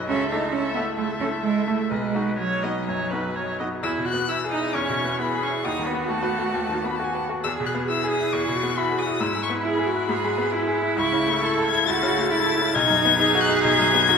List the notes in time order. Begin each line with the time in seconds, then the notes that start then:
Already playing: B1 F#2 F#3 D#4 B4
0.08 C#2 C#4 A4 E5
0.30 A3 D#4 E4 A4
0.53 C#4 A4 E5
0.75 A3 B3 E4 A4
0.97 C#2 A3 A4 E5
1.20 A3 C#4 E4 A4
1.43 G#3
1.67 A3 E4 A4
1.90 B1 G#3 B4 D#5
2.15 B3 D#4 F#4
2.38 F#3 C#5 D#5
2.63 B3 D#4 F#4 D#5
2.87 F#2 C#5
3.10 B3 D#4 F#4 B4
3.35 C#5
3.59 B3 D#4 F#4 D#5
3.83 E2 E4 E6
3.98 B2
4.05 F#4 F#6
4.14 B3
4.28 E4 E6
4.44 G#4
4.51 D#4 D#6
4.59 E4
4.74 E2 C#4 E4 C#6
4.89 B2
5.04 B3
5.19 B3 E4 G#4 B5
5.35 G#4
5.42 C#4 C#6
5.50 E4
5.64 D#2 D#4 F#4 D#6
5.79 D#3
5.87 B3 B5
5.94 B3
6.08 A3 F#4 A5
6.23 B4
6.38 F#4
6.54 D#2
6.69 D#3
6.84 B3 B5
6.95 F#4 A5
6.99 F#4
7.04 G#5
7.13 B4 A5
7.29 F#4
7.43 E2 G#4 E6
7.60 B2
7.66 F#6
7.75 B3
7.89 E4 G#4 E6
8.04 G#4
8.11 D#6
8.19 E4
8.33 E2 E4 C#6
8.49 B2
8.55 F#4
8.63 B3
8.77 E4 F#4 B5
8.92 G#4
8.99 D#6
9.06 E4
9.20 G#2 E4 E6
9.35 G#3
9.43 C#6
9.50 B3
9.65 E4 G#4 B5
9.79 G#4
9.86 F#4
9.94 E4
10.09 G#2 G#4
10.24 G#3
10.38 B3
10.53 E4
10.68 G#4
10.82 E4
10.97 C#2 E4 C#6
11.12 C#3
11.27 A3
11.41 E4 A4
11.58 A4
11.65 G#6
11.73 E4
11.87 C#2 E4 F#4 A6
12.03 C#3
12.18 A3
12.31 E4 A6
12.46 A4
12.61 E4
12.74 B1 D#4 G#6
12.90 F#2
13.05 B3
13.19 D#4 G#4
13.35 F#4
13.41 F#6
13.49 D#4
13.63 B1 G#6
13.79 F#2
13.94 B3
14.08 D#4 F#4